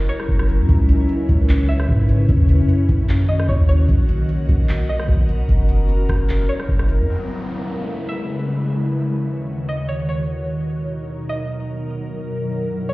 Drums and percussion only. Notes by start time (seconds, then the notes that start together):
0.20 cross-stick
0.29 kick
0.39 cross-stick
0.49 closed hi-hat
0.69 kick, closed hi-hat
0.89 closed hi-hat
1.09 closed hi-hat
1.29 kick, closed hi-hat
1.49 clap, closed hi-hat
1.80 cross-stick
1.89 kick
2.09 closed hi-hat
2.29 kick, closed hi-hat
2.49 closed hi-hat
2.69 closed hi-hat
2.89 kick, closed hi-hat
3.09 clap, closed hi-hat
3.40 cross-stick
3.49 kick
3.69 closed hi-hat
3.89 kick, closed hi-hat
4.09 closed hi-hat
4.29 closed hi-hat
4.49 kick, closed hi-hat
4.69 clap, closed hi-hat
5.00 cross-stick
5.09 kick
5.29 closed hi-hat
5.49 kick, closed hi-hat
5.69 closed hi-hat
5.89 closed hi-hat
6.09 kick, cross-stick, closed hi-hat
6.29 clap, closed hi-hat
6.60 cross-stick
6.69 kick
6.79 cross-stick
6.89 closed hi-hat